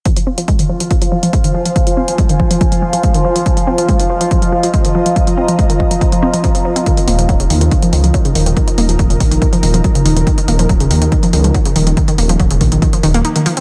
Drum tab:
HH |xx-xxx-xxx-xxx-x|xx-xxx-xxx-xxx-x|xx-xxx-xxx-xxx-x|xx-xxx-xxx-xxx-x|
BD |o---o---o---o---|o---o-o-o---o---|o---o---o---o---|o---o-o-o---o---|

HH |xxoxxxoxxxoxxxox|xxoxxxoxxxoxxxox|xxoxxxoxxxoxxxox|xxoxxxoxxxoxxxox|
BD |o---o---o---o---|o---o-o-o---o---|o---o---o---o---|o---o-o-o-------|